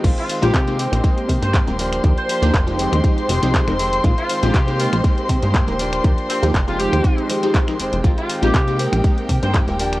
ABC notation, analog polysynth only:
X:1
M:4/4
L:1/16
Q:"Swing 16ths" 1/4=120
K:Ablyd
V:1 name="Analog polysynth"
[A,B,CEF] z2 [A,B,CEF] z [A,B,CEG]3 [A,B,CEG]3 [A,B,CEG]2 [A,B,CEB] z2 | [F,B,DEG] z2 [F,B,DEG] z [F,A,CEG]3 [F,A,CEG]3 [F,A,CEG]2 [F,A,CEB] z2 | [A,B,CEF] z2 [A,B,CEF] z [A,B,CEG]3 [A,B,CEG]3 [A,B,CEG]2 [A,B,CEB] z2 | [F,B,DEG] z2 [F,B,DEG] z [F,A,CEG]3 [F,A,CEG]3 [F,A,CEG]2 [F,A,CEB] z2 |
[A,B,CEF] z2 [A,B,CEF] z [A,B,CEG]3 [A,B,CEG]3 [A,B,CEG]2 [A,B,CEB] z2 |]